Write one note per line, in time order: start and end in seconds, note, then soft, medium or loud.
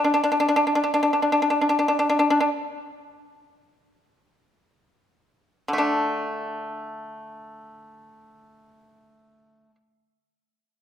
0.04 0.13 D4 soft
0.14 0.22 D4 soft
0.24 0.30 D4 soft
0.32 0.39 D4 soft
0.40 0.47 D4 soft
0.49 0.55 D4 soft
0.56 0.66 D4 soft
0.67 0.74 D4 soft
0.75 0.82 D4 soft
0.84 0.93 D4 soft
0.94 1.02 D4 soft
1.03 1.12 D4 soft
1.13 1.21 D4 soft
1.22 1.31 D4 soft
1.32 1.41 D4 soft
1.42 1.49 D4 soft
1.50 1.59 D4 soft
1.61 1.68 D4 soft
1.69 1.78 D4 soft
1.79 1.87 D4 soft
1.88 1.98 D4 soft
1.99 2.08 D4 soft
2.10 2.18 D4 soft
2.19 2.28 D4 soft
2.30 2.39 D4 soft
2.40 2.49 D4 soft
5.68 9.65 D3 soft
5.73 9.70 A3 soft
5.78 9.75 D4 soft